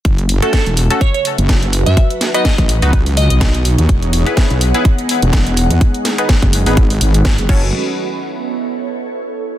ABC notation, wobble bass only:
X:1
M:4/4
L:1/16
Q:"Swing 16ths" 1/4=125
K:Bmix
V:1 name="Wobble bass" clef=bass
F,,,3 z2 E,,,2 z4 F,,,4 F,, | z4 z A,,,2 C,,4 B,,,4 D,, | E,,,3 z2 B,,,2 z4 E,,,4 E,, | z4 z F,,,2 G,,,3 G,,,3 F,,, F,,,2 |
z16 |]